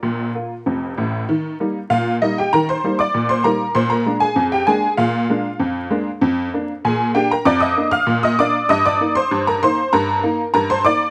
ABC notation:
X:1
M:2/4
L:1/16
Q:1/4=97
K:Eb
V:1 name="Honky-tonk piano"
[Bd]4 z4 | z4 [Ff]2 [Ee] [Gg] | [Bb] [cc']2 [dd']2 [cc'] [Bb]2 | [cc'] [Bb]2 [Aa]2 [Gg] [Aa]2 |
[Ff]8 | z4 [Aa]2 [Gg] [Bb] | [dd'] [ee']2 [ff']2 [ee'] [dd']2 | [ee'] [dd']2 [cc']2 [Bb] [cc']2 |
[Bb]4 [Bb] [cc'] [dd']2 |]
V:2 name="Honky-tonk piano"
[B,,,B,,]2 [B,F]2 [F,,,F,,]2 [=A,,,=A,,]2 | E,2 [G,B,E]2 B,,2 [G,B,]2 | E,2 [G,B,E]2 B,,2 [G,B,E]2 | B,,2 [A,B,D]2 F,,2 [A,B,D]2 |
B,,2 [A,B,D]2 F,,2 [A,B,D]2 | F,,2 [B,D]2 B,,2 [B,D]2 | F,,2 [B,D]2 B,,2 [B,D]2 | G,,2 [B,E]2 G,,2 [B,E]2 |
G,,2 [B,E]2 G,,2 [B,E]2 |]